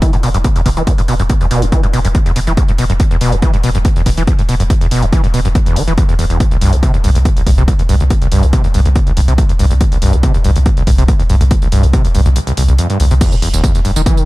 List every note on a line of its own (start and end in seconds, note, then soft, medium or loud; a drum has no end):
0.02 0.11 E3 medium
0.02 kick loud
0.02 closed hi-hat medium
0.13 0.17 G2 loud
0.13 closed hi-hat medium
0.23 0.34 E1 loud
0.23 0.29 B2 loud
0.23 open hi-hat medium
0.34 0.44 E1 medium
0.34 0.38 F#2 loud
0.34 closed hi-hat medium
0.44 0.48 E2 loud
0.44 kick loud
0.44 closed hi-hat medium
0.56 0.61 E2 loud
0.56 closed hi-hat medium
0.66 0.76 E1 loud
0.66 0.69 B2 loud
0.66 kick medium
0.66 open hi-hat loud
0.77 0.87 E1 medium
0.77 0.83 E3 medium
0.77 closed hi-hat medium
0.87 0.93 E2 medium
0.87 kick loud
0.87 closed hi-hat loud
0.98 1.02 G2 loud
0.98 closed hi-hat medium
1.08 1.19 E1 loud
1.08 1.15 B2 loud
1.08 open hi-hat medium
1.20 1.29 E1 medium
1.20 1.23 F#2 loud
1.20 closed hi-hat medium
1.30 1.33 E2 loud
1.30 kick loud
1.30 closed hi-hat loud
1.41 1.46 E2 loud
1.41 closed hi-hat medium
1.51 1.62 E1 loud
1.51 1.64 B2 loud
1.51 open hi-hat loud
1.62 1.72 E1 medium
1.62 1.65 E2 medium
1.62 closed hi-hat medium
1.72 1.81 E3 medium
1.72 kick loud
1.72 closed hi-hat loud
1.83 1.87 G2 loud
1.83 closed hi-hat medium
1.93 2.04 E1 loud
1.93 2.00 B2 loud
1.93 open hi-hat medium
2.05 2.15 E1 medium
2.05 2.08 F#2 loud
2.05 closed hi-hat medium
2.15 2.18 E2 loud
2.15 kick loud
2.15 closed hi-hat loud
2.26 2.31 E2 loud
2.26 closed hi-hat medium
2.36 2.47 E1 loud
2.36 2.40 B2 loud
2.36 open hi-hat loud
2.47 2.57 E1 medium
2.47 2.53 E3 medium
2.47 closed hi-hat medium
2.57 2.63 E2 medium
2.57 kick loud
2.57 closed hi-hat loud
2.68 2.72 G2 loud
2.68 closed hi-hat medium
2.78 2.89 E1 loud
2.78 2.85 B2 loud
2.78 open hi-hat loud
2.90 3.00 E1 medium
2.90 2.93 F#2 loud
2.90 closed hi-hat medium
3.00 3.04 E2 loud
3.00 kick loud
3.00 closed hi-hat loud
3.11 3.17 E2 loud
3.11 closed hi-hat medium
3.21 3.32 E1 loud
3.21 3.34 B2 loud
3.21 open hi-hat loud
3.32 3.42 E1 medium
3.32 3.36 E2 medium
3.32 closed hi-hat medium
3.42 3.52 E3 medium
3.42 kick loud
3.42 closed hi-hat medium
3.54 3.57 G2 loud
3.54 closed hi-hat medium
3.63 3.74 E1 loud
3.63 3.70 B2 loud
3.63 open hi-hat loud
3.75 3.85 E1 medium
3.75 3.78 F#2 loud
3.75 closed hi-hat medium
3.85 3.89 E2 loud
3.85 kick loud
3.85 closed hi-hat medium
3.96 4.02 E2 loud
3.96 closed hi-hat medium
4.06 4.17 E1 loud
4.06 4.10 B2 loud
4.06 kick medium
4.06 open hi-hat loud
4.17 4.27 E1 medium
4.17 4.23 E3 medium
4.17 closed hi-hat medium
4.27 4.34 E2 medium
4.27 kick loud
4.27 closed hi-hat loud
4.39 4.42 G2 loud
4.39 closed hi-hat medium
4.49 4.59 E1 loud
4.49 4.55 B2 loud
4.49 open hi-hat loud
4.60 4.70 E1 medium
4.60 4.63 F#2 loud
4.60 closed hi-hat medium
4.70 4.74 E2 loud
4.70 kick loud
4.70 closed hi-hat loud
4.81 4.87 E2 loud
4.81 closed hi-hat medium
4.91 5.02 E1 loud
4.91 5.04 B2 loud
4.91 open hi-hat loud
5.02 5.12 E1 medium
5.02 5.06 E2 medium
5.02 closed hi-hat medium
5.13 5.22 E3 medium
5.13 kick loud
5.13 closed hi-hat medium
5.24 5.27 G2 loud
5.24 closed hi-hat medium
5.34 5.44 E1 loud
5.34 5.40 B2 loud
5.34 open hi-hat medium
5.45 5.55 E1 medium
5.45 5.48 F#2 loud
5.45 closed hi-hat medium
5.55 5.59 E2 loud
5.55 kick loud
5.55 closed hi-hat medium
5.66 5.78 E2 loud
5.66 closed hi-hat medium
5.76 5.87 E1 loud
5.76 5.83 E3 loud
5.76 open hi-hat loud
5.87 5.97 E1 medium
5.87 5.93 E3 medium
5.87 closed hi-hat medium
5.98 6.04 E2 medium
5.98 kick loud
5.98 closed hi-hat medium
6.09 6.14 E2 loud
6.09 closed hi-hat medium
6.19 6.29 E1 loud
6.19 6.25 E2 loud
6.19 open hi-hat medium
6.30 6.40 E1 medium
6.30 6.38 E2 medium
6.30 closed hi-hat medium
6.40 6.44 C2 loud
6.40 kick loud
6.40 closed hi-hat medium
6.51 6.57 C2 loud
6.51 closed hi-hat medium
6.61 6.72 C2 loud
6.61 6.74 G2 loud
6.61 open hi-hat loud
6.73 6.83 C2 medium
6.73 6.76 C2 medium
6.73 closed hi-hat medium
6.83 6.92 C3 medium
6.83 kick loud
6.83 closed hi-hat medium
6.94 6.97 D#2 loud
6.94 closed hi-hat soft
7.04 7.15 C2 loud
7.04 7.10 G2 loud
7.04 open hi-hat medium
7.15 7.25 C2 medium
7.15 7.19 D2 loud
7.15 closed hi-hat medium
7.25 7.29 C2 loud
7.25 kick loud
7.25 closed hi-hat medium
7.37 7.42 C2 loud
7.37 closed hi-hat soft
7.47 7.57 C2 loud
7.47 7.50 G2 loud
7.47 kick medium
7.47 open hi-hat loud
7.58 7.68 C2 medium
7.58 7.63 C3 medium
7.58 closed hi-hat medium
7.68 7.74 C2 medium
7.68 kick loud
7.68 closed hi-hat medium
7.79 7.82 D#2 loud
7.79 closed hi-hat medium
7.89 8.00 C2 loud
7.89 7.95 G2 loud
7.89 open hi-hat medium
8.00 8.10 C2 medium
8.00 8.04 D2 loud
8.00 closed hi-hat soft
8.10 8.14 C2 loud
8.10 kick loud
8.10 closed hi-hat medium
8.22 8.27 C2 loud
8.22 closed hi-hat medium
8.32 8.42 C2 loud
8.32 8.45 G2 loud
8.32 open hi-hat loud
8.43 8.53 C2 medium
8.43 8.46 C2 medium
8.43 closed hi-hat medium
8.53 8.62 C3 medium
8.53 kick loud
8.53 closed hi-hat medium
8.64 8.68 D#2 loud
8.64 closed hi-hat soft
8.74 8.85 C2 loud
8.74 8.80 G2 loud
8.74 open hi-hat medium
8.85 8.95 C2 medium
8.85 8.89 D2 loud
8.85 closed hi-hat soft
8.96 8.99 C2 loud
8.96 kick loud
8.96 closed hi-hat medium
9.07 9.12 C2 loud
9.07 closed hi-hat soft
9.17 9.27 C2 loud
9.17 9.21 G2 loud
9.17 open hi-hat loud
9.28 9.38 C2 medium
9.28 9.34 C3 medium
9.28 closed hi-hat medium
9.38 9.44 C2 medium
9.38 kick loud
9.38 closed hi-hat medium
9.49 9.53 D#2 loud
9.49 closed hi-hat soft
9.59 9.70 C2 loud
9.59 9.66 G2 loud
9.59 open hi-hat medium
9.71 9.80 C2 medium
9.71 9.74 D2 loud
9.71 closed hi-hat soft
9.81 9.84 C2 loud
9.81 kick loud
9.81 closed hi-hat medium
9.92 9.97 C2 loud
9.92 closed hi-hat medium
10.02 10.13 C2 loud
10.02 10.15 G2 loud
10.02 open hi-hat loud
10.13 10.23 C2 medium
10.13 10.17 C2 medium
10.13 closed hi-hat medium
10.23 10.33 C3 medium
10.23 kick loud
10.23 closed hi-hat medium
10.34 10.38 D#2 loud
10.34 closed hi-hat medium
10.44 10.55 C2 loud
10.44 10.51 G2 loud
10.44 open hi-hat medium
10.56 10.66 C2 medium
10.56 10.59 D2 loud
10.56 closed hi-hat medium
10.66 10.70 C2 loud
10.66 kick loud
10.66 closed hi-hat medium
10.77 10.83 C2 loud
10.77 closed hi-hat medium
10.87 10.98 C2 loud
10.87 10.91 G2 loud
10.87 kick medium
10.87 open hi-hat loud
10.98 11.08 C2 medium
10.98 11.04 C3 medium
10.98 closed hi-hat medium
11.08 11.15 C2 medium
11.08 kick loud
11.08 closed hi-hat medium
11.20 11.23 D#2 loud
11.20 closed hi-hat soft
11.30 11.40 C2 loud
11.30 11.36 G2 loud
11.30 open hi-hat medium
11.41 11.51 C2 medium
11.41 11.44 D2 loud
11.41 closed hi-hat medium
11.51 11.55 C2 loud
11.51 kick loud
11.51 closed hi-hat loud
11.62 11.68 C2 loud
11.62 closed hi-hat medium
11.72 11.83 C2 loud
11.72 11.85 G2 loud
11.72 open hi-hat loud
11.83 11.93 C2 medium
11.83 11.87 C2 medium
11.83 closed hi-hat medium
11.93 12.03 C3 medium
11.93 kick loud
11.93 closed hi-hat medium
12.05 12.08 D#2 loud
12.05 closed hi-hat medium
12.15 12.25 C2 loud
12.15 12.21 G2 loud
12.15 open hi-hat medium
12.26 12.36 C2 medium
12.26 12.29 D2 loud
12.26 closed hi-hat medium
12.36 12.40 C2 loud
12.36 closed hi-hat medium
12.47 12.53 C2 loud
12.47 closed hi-hat medium
12.57 12.68 C2 loud
12.57 12.63 C2 loud
12.57 open hi-hat loud
12.68 12.78 C2 medium
12.68 12.74 C2 medium
12.68 closed hi-hat medium
12.78 12.88 F2 medium
12.78 closed hi-hat medium
12.90 12.98 G2 medium
12.90 closed hi-hat medium
13.00 13.10 C2 loud
13.00 13.06 D2 medium
13.00 open hi-hat medium
13.11 13.21 C2 medium
13.11 13.14 C3 medium
13.11 closed hi-hat medium
13.21 13.34 E2 medium
13.21 kick loud
13.21 closed hi-hat loud
13.21 tambourine medium
13.21 crash loud
13.32 13.36 D#3 medium
13.32 closed hi-hat medium
13.32 tambourine soft
13.42 13.53 E1 loud
13.42 13.49 E2 medium
13.42 open hi-hat loud
13.53 13.63 E1 medium
13.53 13.62 D#2 medium
13.53 closed hi-hat medium
13.53 tambourine medium
13.64 13.73 E2 medium
13.64 kick loud
13.64 closed hi-hat loud
13.64 tambourine medium
13.75 13.80 E2 medium
13.75 closed hi-hat medium
13.75 tambourine soft
13.85 13.95 E1 loud
13.85 13.91 G2 medium
13.85 open hi-hat medium
13.96 14.06 E1 medium
13.96 14.02 D#3 medium
13.96 closed hi-hat medium
13.96 tambourine medium
14.06 14.19 E3 medium
14.06 kick loud
14.06 closed hi-hat loud
14.06 tambourine medium
14.17 14.25 D#3 medium
14.17 closed hi-hat medium
14.17 tambourine soft